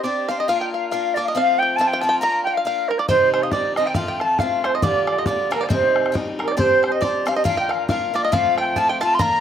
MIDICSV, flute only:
0, 0, Header, 1, 2, 480
1, 0, Start_track
1, 0, Tempo, 436047
1, 523, Time_signature, 2, 2, 24, 8
1, 10351, End_track
2, 0, Start_track
2, 0, Title_t, "Flute"
2, 0, Program_c, 0, 73
2, 35, Note_on_c, 0, 74, 82
2, 306, Note_on_c, 0, 77, 81
2, 322, Note_off_c, 0, 74, 0
2, 400, Note_off_c, 0, 77, 0
2, 406, Note_on_c, 0, 75, 61
2, 515, Note_on_c, 0, 77, 105
2, 532, Note_off_c, 0, 75, 0
2, 649, Note_off_c, 0, 77, 0
2, 655, Note_on_c, 0, 79, 68
2, 719, Note_off_c, 0, 79, 0
2, 789, Note_on_c, 0, 77, 75
2, 970, Note_off_c, 0, 77, 0
2, 977, Note_on_c, 0, 77, 95
2, 1251, Note_on_c, 0, 74, 85
2, 1267, Note_off_c, 0, 77, 0
2, 1341, Note_off_c, 0, 74, 0
2, 1360, Note_on_c, 0, 77, 63
2, 1389, Note_off_c, 0, 77, 0
2, 1460, Note_on_c, 0, 77, 120
2, 1740, Note_on_c, 0, 79, 102
2, 1757, Note_off_c, 0, 77, 0
2, 1934, Note_on_c, 0, 81, 95
2, 1950, Note_off_c, 0, 79, 0
2, 2056, Note_on_c, 0, 79, 87
2, 2073, Note_off_c, 0, 81, 0
2, 2205, Note_on_c, 0, 81, 104
2, 2222, Note_off_c, 0, 79, 0
2, 2402, Note_off_c, 0, 81, 0
2, 2408, Note_on_c, 0, 82, 124
2, 2672, Note_off_c, 0, 82, 0
2, 2678, Note_on_c, 0, 79, 80
2, 2789, Note_on_c, 0, 77, 75
2, 2806, Note_off_c, 0, 79, 0
2, 2896, Note_off_c, 0, 77, 0
2, 2903, Note_on_c, 0, 77, 89
2, 3169, Note_on_c, 0, 70, 76
2, 3185, Note_off_c, 0, 77, 0
2, 3275, Note_on_c, 0, 74, 59
2, 3291, Note_off_c, 0, 70, 0
2, 3380, Note_off_c, 0, 74, 0
2, 3387, Note_on_c, 0, 72, 110
2, 3651, Note_off_c, 0, 72, 0
2, 3660, Note_on_c, 0, 72, 81
2, 3767, Note_on_c, 0, 77, 58
2, 3780, Note_off_c, 0, 72, 0
2, 3858, Note_on_c, 0, 74, 93
2, 3875, Note_off_c, 0, 77, 0
2, 4126, Note_off_c, 0, 74, 0
2, 4132, Note_on_c, 0, 75, 84
2, 4243, Note_on_c, 0, 79, 77
2, 4260, Note_off_c, 0, 75, 0
2, 4329, Note_off_c, 0, 79, 0
2, 4334, Note_on_c, 0, 79, 65
2, 4360, Note_off_c, 0, 79, 0
2, 4497, Note_on_c, 0, 79, 71
2, 4611, Note_off_c, 0, 79, 0
2, 4617, Note_on_c, 0, 81, 86
2, 4826, Note_on_c, 0, 77, 83
2, 4843, Note_off_c, 0, 81, 0
2, 5114, Note_on_c, 0, 72, 75
2, 5131, Note_off_c, 0, 77, 0
2, 5216, Note_on_c, 0, 75, 67
2, 5233, Note_off_c, 0, 72, 0
2, 5322, Note_off_c, 0, 75, 0
2, 5333, Note_on_c, 0, 74, 113
2, 5586, Note_off_c, 0, 74, 0
2, 5618, Note_on_c, 0, 74, 81
2, 5708, Note_on_c, 0, 75, 67
2, 5725, Note_off_c, 0, 74, 0
2, 5801, Note_off_c, 0, 75, 0
2, 5807, Note_on_c, 0, 74, 78
2, 6063, Note_off_c, 0, 74, 0
2, 6088, Note_on_c, 0, 70, 80
2, 6197, Note_on_c, 0, 74, 53
2, 6214, Note_off_c, 0, 70, 0
2, 6292, Note_off_c, 0, 74, 0
2, 6297, Note_on_c, 0, 72, 87
2, 6738, Note_off_c, 0, 72, 0
2, 7077, Note_on_c, 0, 70, 77
2, 7168, Note_on_c, 0, 74, 59
2, 7184, Note_off_c, 0, 70, 0
2, 7261, Note_on_c, 0, 72, 104
2, 7277, Note_off_c, 0, 74, 0
2, 7529, Note_off_c, 0, 72, 0
2, 7548, Note_on_c, 0, 72, 76
2, 7630, Note_off_c, 0, 72, 0
2, 7635, Note_on_c, 0, 75, 67
2, 7730, Note_on_c, 0, 74, 80
2, 7746, Note_off_c, 0, 75, 0
2, 8013, Note_on_c, 0, 77, 82
2, 8029, Note_off_c, 0, 74, 0
2, 8103, Note_off_c, 0, 77, 0
2, 8109, Note_on_c, 0, 75, 71
2, 8201, Note_off_c, 0, 75, 0
2, 8211, Note_on_c, 0, 77, 108
2, 8336, Note_off_c, 0, 77, 0
2, 8353, Note_on_c, 0, 79, 88
2, 8484, Note_on_c, 0, 77, 97
2, 8501, Note_off_c, 0, 79, 0
2, 8664, Note_off_c, 0, 77, 0
2, 8671, Note_on_c, 0, 77, 86
2, 8964, Note_on_c, 0, 74, 82
2, 8980, Note_off_c, 0, 77, 0
2, 9057, Note_on_c, 0, 75, 72
2, 9073, Note_off_c, 0, 74, 0
2, 9163, Note_on_c, 0, 77, 114
2, 9179, Note_off_c, 0, 75, 0
2, 9439, Note_off_c, 0, 77, 0
2, 9453, Note_on_c, 0, 79, 95
2, 9660, Note_on_c, 0, 81, 109
2, 9676, Note_off_c, 0, 79, 0
2, 9780, Note_on_c, 0, 79, 85
2, 9796, Note_off_c, 0, 81, 0
2, 9919, Note_off_c, 0, 79, 0
2, 9928, Note_on_c, 0, 81, 106
2, 10060, Note_on_c, 0, 84, 83
2, 10076, Note_off_c, 0, 81, 0
2, 10136, Note_on_c, 0, 82, 126
2, 10153, Note_off_c, 0, 84, 0
2, 10351, Note_off_c, 0, 82, 0
2, 10351, End_track
0, 0, End_of_file